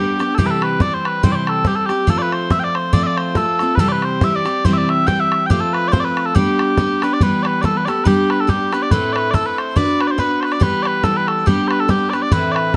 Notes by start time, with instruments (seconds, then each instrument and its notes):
Already playing: steel-string acoustic guitar G3 B3 D4 G4, bagpipes G4
0.19 steel-string acoustic guitar B3 D4 G4, bodhran
0.35 steel-string acoustic guitar C3 E3 G3, bagpipes G4 A4, bodhran
0.39 steel-string acoustic guitar C4 G4
0.46 bagpipes B4
0.51 bagpipes A4
0.62 bagpipes B4, bodhran
0.80 steel-string acoustic guitar E3 G3 C4 G4, bagpipes D5, bodhran
0.94 bagpipes C5
1.05 bagpipes B4, bodhran
1.23 steel-string acoustic guitar C3 E3 G3 C4 G4, bagpipes C5, bodhran
1.32 bagpipes C5 D5
1.47 bagpipes A4, bodhran
1.65 steel-string acoustic guitar E3 G3 C4 G4, bagpipes G4, bodhran
1.76 bagpipes A4
1.86 steel-string acoustic guitar C4 G4, bagpipes G4, bodhran
1.91 steel-string acoustic guitar G3
2.07 steel-string acoustic guitar F3 A3 C4 F4, bagpipes A4, bodhran
2.18 bagpipes B4 D5
2.32 bagpipes C5, bodhran
2.50 steel-string acoustic guitar F3 A3 C4 F4, bagpipes E5, bodhran
2.60 bagpipes G5
2.64 bagpipes D5
2.75 bagpipes C5, bodhran
2.93 steel-string acoustic guitar F3 A3 C4 F4, bagpipes D5, bodhran
3.03 bagpipes D5 E5
3.17 bagpipes C5, bodhran
3.35 steel-string acoustic guitar F3 A3 C4 F4, bagpipes A4, bodhran
3.59 steel-string acoustic guitar A3 C4 F4, bodhran
3.75 steel-string acoustic guitar C3 E3, bagpipes B4, bodhran
3.80 steel-string acoustic guitar G3 C4 G4, bagpipes A4
3.88 bagpipes B4 D5
4.02 bagpipes C5, bodhran
4.21 steel-string acoustic guitar E3 G3 C4 G4, bagpipes E5, bodhran
4.36 bagpipes D5
4.45 steel-string acoustic guitar G3 C4 G4, bodhran
4.65 steel-string acoustic guitar C3 E3 G3 C4 G4, bagpipes C5, bodhran
4.73 bagpipes E5
4.78 bagpipes D5
4.89 bagpipes E5, bodhran
5.07 steel-string acoustic guitar E3 G3 C4 G4, bagpipes G5, bodhran
5.20 bagpipes E5
5.32 bodhran
5.46 steel-string acoustic guitar F3, bagpipes G5, bodhran
5.50 steel-string acoustic guitar A3 C4 F4, bagpipes G4
5.61 bagpipes A4
5.73 bagpipes B4, bodhran
5.88 steel-string acoustic guitar F3, bagpipes D5
5.92 steel-string acoustic guitar A3 C4 F4, bagpipes C5, bodhran
6.00 bagpipes D5
6.04 bagpipes B4
6.17 bodhran
6.26 bagpipes A4
6.35 steel-string acoustic guitar G3 B3 D4 G4, bagpipes G4, bodhran
6.59 bodhran
6.77 steel-string acoustic guitar G3 B3 D4 G4, bodhran
7.02 steel-string acoustic guitar B3 D4 G4, bagpipes B4, bodhran
7.13 bagpipes D5
7.21 steel-string acoustic guitar E3 G3 B3 G4, bagpipes B4, bodhran
7.43 bagpipes B4 D5, bodhran
7.61 steel-string acoustic guitar E3 G3 B3 G4, bagpipes A4 D5, bodhran
7.77 bagpipes B4
7.85 steel-string acoustic guitar B3 G4, bagpipes A4 D5, bodhran
7.89 steel-string acoustic guitar G3
8.04 steel-string acoustic guitar G3 B3 D4 G4, bagpipes G4 B4, bodhran
8.30 bagpipes B4, bodhran
8.40 bagpipes A4
8.47 steel-string acoustic guitar G3 B3 D4 G4, bagpipes G4, bodhran
8.72 steel-string acoustic guitar B3 D4 G4, bagpipes B4, bodhran
8.82 bagpipes D5
8.91 steel-string acoustic guitar A2 A3 C4 E4 A4, bagpipes B4, bodhran
9.13 bagpipes B4 D5, bodhran
9.31 steel-string acoustic guitar A3 C4, bagpipes A4 D5, bodhran
9.35 steel-string acoustic guitar E4 A4
9.46 bagpipes B4
9.58 bagpipes C5, bodhran
9.76 steel-string acoustic guitar B3 D4 F#4 B4, bagpipes D5, bodhran
10.01 bagpipes B4, bodhran
10.07 bagpipes C5 D5
10.18 steel-string acoustic guitar B3 D4 F#4 B4, bagpipes B4, bodhran
10.40 bagpipes B4 C5, bodhran
10.52 bagpipes D5, bodhran
10.60 steel-string acoustic guitar E3 G3 B3 G4, bagpipes B4, bodhran
10.83 bagpipes D5, bodhran
10.87 bagpipes B4
11.03 steel-string acoustic guitar E3 G3 B3 G4, bagpipes A4, bodhran
11.17 bagpipes B4
11.28 bagpipes A4, bodhran
11.46 steel-string acoustic guitar G3 B3 D4 G4, bagpipes G4, bodhran
11.68 bagpipes B4 C5, bodhran
11.80 bagpipes A4
11.88 steel-string acoustic guitar G3 B3 D4 G4, bagpipes G4, bodhran
12.10 steel-string acoustic guitar G4, bagpipes B4 D5, bodhran
12.14 steel-string acoustic guitar B3 D4
12.22 bagpipes D5
12.32 steel-string acoustic guitar A2 E3 A3 C4 E4, bagpipes B4, bodhran
12.52 bagpipes B4 D5
12.56 bodhran